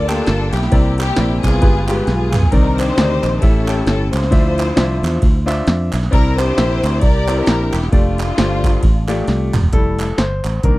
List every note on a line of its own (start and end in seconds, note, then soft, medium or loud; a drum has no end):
0.00 0.21 D2 medium
0.00 0.69 A#4 medium
0.08 0.54 A#3 medium
0.08 0.68 D4 medium
0.08 0.68 F4 medium
0.08 0.54 G4 medium
0.08 0.53 A4 loud
0.08 0.54 G5 medium
0.08 0.54 A5 medium
0.08 clap loud
0.08 ride medium
0.27 0.49 G1 loud
0.27 snare medium
0.27 ride medium
0.53 0.69 B1 loud
0.53 0.98 A#3 medium
0.53 0.99 E4 medium
0.53 0.98 G4 medium
0.53 clap medium
0.53 ride medium
0.63 snare soft
0.71 1.10 C2 loud
0.71 1.39 C3 medium
0.71 1.05 C4 medium
0.71 1.05 E4 medium
0.71 1.05 A#4 medium
0.71 1.05 D5 medium
0.71 kick loud
0.71 ride medium
0.98 1.59 A#3 medium
0.98 1.59 E4 medium
0.98 1.40 G4 loud
0.98 clap loud
0.98 ride medium
1.16 1.39 A#1 loud
1.16 1.62 C4 medium
1.16 1.62 E4 medium
1.16 1.62 A#4 medium
1.16 1.62 D5 medium
1.16 snare loud
1.16 ride medium
1.43 1.59 C2 loud
1.43 2.06 B3 medium
1.43 2.07 F4 medium
1.43 1.88 G#4 loud
1.43 kick medium
1.43 clap loud
1.43 ride medium
1.62 2.01 G1 loud
1.62 2.29 G2 medium
1.62 1.83 G#3 medium
1.62 1.83 F4 medium
1.62 1.83 G4 medium
1.62 1.83 B4 medium
1.62 kick loud
1.62 ride medium
1.88 2.35 G#3 medium
1.88 2.35 F4 medium
1.88 2.07 G4 medium
1.88 2.35 G4 medium
1.88 1.93 G#4 medium
1.88 clap loud
1.88 ride medium
1.95 2.38 B4 medium
2.07 2.46 B1 loud
2.07 2.49 B3 medium
2.07 2.49 F4 medium
2.07 2.52 G#4 medium
2.07 snare soft
2.07 ride medium
2.33 clap medium
2.33 mid tom loud
2.33 ride medium
2.43 floor tom loud
2.52 2.91 C2 loud
2.52 3.19 C3 medium
2.52 2.85 D#3 medium
2.52 2.85 C4 medium
2.52 3.38 D4 medium
2.52 2.78 D#4 medium
2.52 2.85 A#4 medium
2.52 2.78 A#4 medium
2.52 2.86 D5 medium
2.52 kick loud
2.52 ride medium
2.78 3.39 D#4 medium
2.78 3.39 G4 medium
2.78 3.42 C5 loud
2.78 clap loud
2.78 ride medium
2.97 3.19 D2 medium
2.97 3.42 D#3 medium
2.97 3.42 C4 medium
2.97 3.42 A#4 medium
2.97 3.42 D5 medium
2.97 snare loud
2.97 ride medium
3.23 3.39 A#1 medium
3.23 clap medium
3.23 ride soft
3.41 3.81 A1 loud
3.41 4.09 A2 medium
3.41 3.62 C#4 medium
3.41 4.29 C#4 medium
3.41 4.12 E4 medium
3.41 3.63 G4 medium
3.41 3.63 A4 medium
3.41 3.86 A4 medium
3.41 3.63 E5 medium
3.41 kick loud
3.41 ride medium
3.67 4.14 C#4 medium
3.67 4.14 G4 medium
3.67 4.15 A4 medium
3.67 4.15 G5 medium
3.67 clap loud
3.67 ride medium
3.87 4.09 G1 loud
3.87 4.11 A4 medium
3.87 snare loud
3.87 ride medium
4.12 4.29 C#2 medium
4.12 5.44 E4 medium
4.12 5.44 F4 medium
4.12 5.44 C5 medium
4.12 clap loud
4.12 ride medium
4.23 snare soft
4.31 4.71 D2 loud
4.31 4.99 D3 medium
4.31 4.65 F3 medium
4.31 4.65 D4 medium
4.31 4.65 C5 medium
4.31 4.65 E5 medium
4.31 kick loud
4.31 ride medium
4.58 clap loud
4.58 ride medium
4.76 4.99 C2 loud
4.76 5.24 F3 medium
4.76 5.24 D4 medium
4.76 5.24 C5 medium
4.76 5.24 E5 medium
4.76 snare loud
4.76 ride medium
5.03 5.19 E2 loud
5.03 clap loud
5.03 ride medium
5.22 5.61 D2 medium
5.22 kick loud
5.22 ride medium
5.46 5.93 D4 medium
5.46 5.94 F4 medium
5.46 5.94 C5 medium
5.46 5.94 E5 medium
5.46 clap loud
5.46 ride medium
5.67 5.89 F2 loud
5.67 snare loud
5.67 ride medium
5.92 6.09 B1 loud
5.92 clap medium
5.92 ride medium
6.03 snare soft
6.11 6.51 C2 loud
6.11 6.79 C3 medium
6.11 6.45 C4 medium
6.11 6.99 D4 medium
6.11 6.45 E4 medium
6.11 6.38 E4 medium
6.11 6.45 A#4 medium
6.11 6.37 A#4 loud
6.11 6.45 D5 medium
6.11 kick loud
6.11 ride medium
6.38 7.25 E4 medium
6.38 7.02 G4 medium
6.38 7.02 C5 loud
6.38 clap loud
6.38 ride medium
6.57 6.80 A#1 medium
6.57 7.04 C4 medium
6.57 7.04 E4 medium
6.57 7.04 A#4 medium
6.57 7.04 E5 medium
6.57 snare loud
6.57 ride medium
6.83 7.00 D2 medium
6.83 clap medium
6.83 ride medium
6.99 7.41 C2 medium
6.99 7.36 A#4 medium
6.99 7.36 D5 loud
6.99 kick loud
6.99 ride medium
7.03 7.71 G4 medium
7.28 7.75 C4 medium
7.28 7.75 E4 medium
7.28 7.75 A#4 medium
7.28 7.75 D5 medium
7.28 clap loud
7.28 ride medium
7.37 7.90 D4 medium
7.37 7.90 E4 medium
7.37 7.73 A#4 loud
7.47 7.69 A#1 medium
7.47 snare loud
7.47 ride medium
7.72 7.90 E1 medium
7.72 7.92 G4 medium
7.72 clap medium
7.72 ride medium
7.83 snare soft
7.91 8.31 F1 loud
7.91 8.26 A3 medium
7.91 9.25 A3 medium
7.91 9.25 D4 medium
7.91 9.23 F4 loud
7.91 8.26 F4 medium
7.91 8.26 G4 medium
7.91 8.26 D5 medium
7.91 kick loud
7.91 ride medium
8.18 clap loud
8.18 ride medium
8.37 8.76 G1 loud
8.37 8.85 A3 medium
8.37 8.85 F4 medium
8.37 8.85 G4 medium
8.37 8.85 C5 medium
8.37 snare loud
8.37 ride medium
8.64 kick medium
8.64 clap medium
8.64 ride soft
8.83 9.21 A1 medium
8.83 kick loud
8.83 ride medium
9.08 9.55 A3 medium
9.08 9.55 F4 medium
9.08 9.55 G4 medium
9.08 9.55 D5 medium
9.08 clap medium
9.08 ride medium
9.28 9.50 C2 loud
9.28 snare medium
9.28 ride medium
9.53 9.70 E1 medium
9.53 clap medium
9.53 mid tom medium
9.53 ride medium
9.63 floor tom medium
9.72 10.12 F1 loud
9.72 10.05 G3 medium
9.72 10.05 A3 soft
9.72 10.05 E4 medium
9.72 10.20 A4 medium
9.72 kick loud
9.72 closed hi-hat medium
9.99 clap loud
9.99 closed hi-hat medium
10.18 10.40 G1 medium
10.18 10.65 C5 medium
10.18 snare loud
10.18 closed hi-hat loud
10.45 10.61 A1 medium
10.45 clap medium
10.45 closed hi-hat medium
10.63 10.79 C2 medium
10.63 10.79 D#3 medium
10.63 10.79 A#3 soft
10.63 10.79 D4 soft
10.63 10.79 A#4 medium
10.63 kick loud
10.63 closed hi-hat medium